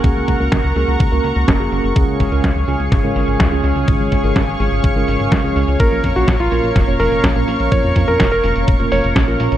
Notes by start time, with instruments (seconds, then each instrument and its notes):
Already playing: analog synth pad A#4 F#5 C#6
0.04 analog synth bass C#2, tine electric piano A#3 C#4 F#4 G#4, analog synth pad A#5, kick, closed hi-hat
0.16 analog synth bass C#2, closed hi-hat
0.28 analog synth bass C#2, kick, open hi-hat
0.40 analog synth bass C#2, tine electric piano A#3 C#4 F#4 A#4, closed hi-hat
0.52 analog synth bass C#2, kick, snare
0.64 analog synth bass C#2
0.76 analog synth bass C#2, tine electric piano A#3 C#4 F#4 G#4, open hi-hat
0.88 analog synth bass C#2, closed hi-hat
1.00 analog synth bass C#2, kick, closed hi-hat
1.12 analog synth bass C#2, tine electric piano A#3 C#4 F#4 A#4, closed hi-hat
1.24 analog synth bass C#2, open hi-hat
1.36 analog synth bass C#2, closed hi-hat
1.48 analog synth bass F#1, kick, snare
1.60 analog synth bass F#1, tine electric piano A#3 C#4 F#4 G#4, closed hi-hat
1.72 analog synth bass F#1, open hi-hat
1.84 analog synth bass F#1, closed hi-hat
1.96 analog synth bass C#2, tine electric piano C#3 G#3 C#4 F4 G#4, analog synth pad G#4 C#5 F5, kick, closed hi-hat
2.08 analog synth bass C#2, closed hi-hat
2.20 analog synth bass G#1, kick, open hi-hat
2.32 analog synth bass C#2, tine electric piano C#3 G#3 C#4 F4 A#4, closed hi-hat
2.44 analog synth bass C#2, kick, snare
2.56 analog synth bass C#2, closed hi-hat
2.68 analog synth bass C#2, tine electric piano C#3 G#3 C#4 F4 G#4, open hi-hat
2.80 analog synth bass C#2, closed hi-hat
2.92 analog synth bass G#1, kick, snare, closed hi-hat
3.04 analog synth bass G#1, tine electric piano C#3 G#3 C#4 F4 A#4, closed hi-hat
3.16 analog synth bass G#1, open hi-hat
3.28 analog synth bass G#1, closed hi-hat
3.40 analog synth bass C#2, kick, snare
3.52 analog synth bass C#2, tine electric piano C#3 G#3 C#4 F4 G#4, closed hi-hat
3.64 analog synth bass C#2, open hi-hat
3.76 analog synth bass C#2, closed hi-hat
3.88 analog synth bass G#1, tine electric piano C#3 G#3 C#4 F4 G#4, analog synth pad C#6, kick, closed hi-hat
4.00 analog synth bass G#1, closed hi-hat
4.12 analog synth bass G#1, kick, open hi-hat
4.24 analog synth bass G#1, tine electric piano C#3 G#3 C#4 F4 A#4, closed hi-hat
4.36 analog synth bass G#1, kick, snare
4.48 analog synth bass G#1, closed hi-hat
4.60 analog synth bass G#1, tine electric piano C#3 G#3 C#4 F4 G#4, open hi-hat
4.72 analog synth bass G#1, closed hi-hat
4.84 analog synth bass G#1, kick, closed hi-hat
4.96 analog synth bass G#1, tine electric piano C#3 G#3 C#4 F4 A#4, closed hi-hat
5.08 analog synth bass G#1, open hi-hat
5.20 analog synth bass G#1, closed hi-hat
5.32 analog synth bass C#2, kick, snare
5.44 analog synth bass C#2, tine electric piano C#3 G#3 C#4 F4 G#4, closed hi-hat
5.56 analog synth bass C#2, open hi-hat
5.68 analog synth bass C#2, closed hi-hat
5.80 analog synth bass A#1, tine electric piano A#2 A#3 C#4 F4 A#4, electric grand piano A#4, analog synth pad A#4 C#6, kick, closed hi-hat
5.92 analog synth bass A#1, closed hi-hat
6.04 analog synth bass F2, kick, open hi-hat
6.16 analog synth bass A#1, tine electric piano A#2 A#3 C#4 F4 C#5, electric grand piano F#4, closed hi-hat
6.28 analog synth bass A#1, kick, snare
6.40 analog synth bass A#1, electric grand piano F4, closed hi-hat
6.52 analog synth bass A#1, tine electric piano A#2 A#3 C#4 F4 A#4, open hi-hat
6.64 analog synth bass A#1, closed hi-hat
6.76 analog synth bass F1, kick, snare, closed hi-hat
6.88 analog synth bass F1, tine electric piano A#2 A#3 C#4 F4 C#5, closed hi-hat
7.00 analog synth bass F1, electric grand piano A#4, open hi-hat
7.12 analog synth bass F1, closed hi-hat
7.24 analog synth bass A#1, kick, snare, closed hi-hat
7.36 analog synth bass A#1, tine electric piano A#2 A#3 C#4 F4 A#4, closed hi-hat
7.48 analog synth bass A#1, open hi-hat
7.60 analog synth bass A#1, closed hi-hat
7.72 analog synth bass F2, tine electric piano A#2 A#3 C#4 F4 A#4, electric grand piano C#5, kick, closed hi-hat
7.84 analog synth bass F2, closed hi-hat
7.96 analog synth bass F2, kick, open hi-hat
8.08 analog synth bass F2, tine electric piano A#2 A#3 C#4 F4, electric grand piano A#4, closed hi-hat
8.20 analog synth bass F1, kick, snare, closed hi-hat
8.32 analog synth bass F1, electric grand piano A#4, closed hi-hat
8.44 analog synth bass F1, tine electric piano A#2 A#3 C#4 F4 A#4, open hi-hat
8.56 analog synth bass F1, closed hi-hat
8.68 analog synth bass F1, kick, closed hi-hat
8.80 analog synth bass F1, tine electric piano A#2 A#3 C#4 F4 C#5, closed hi-hat
8.92 analog synth bass F1, electric grand piano C#5, open hi-hat
9.04 analog synth bass F1, closed hi-hat
9.16 analog synth bass A#1, kick, snare, closed hi-hat
9.28 analog synth bass A#1, tine electric piano A#2 A#3 C#4 F4 A#4, closed hi-hat
9.40 analog synth bass A#1, open hi-hat
9.52 analog synth bass A#1, closed hi-hat